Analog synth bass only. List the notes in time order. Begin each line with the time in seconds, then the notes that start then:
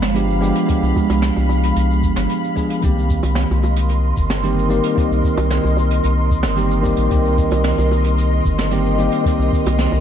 Already playing: G1
0.82 C2
1.09 C2
1.36 C2
1.76 C2
2.03 G1
2.16 G1
2.83 C2
3.23 C2
3.50 C2
4.17 G1
5.11 C2
5.37 C2
5.64 C2
6.04 C2
6.44 G1
6.97 A#1
7.11 C2
7.51 C2
7.77 C2
8.45 G1
9.39 C2
9.66 C2
9.92 C2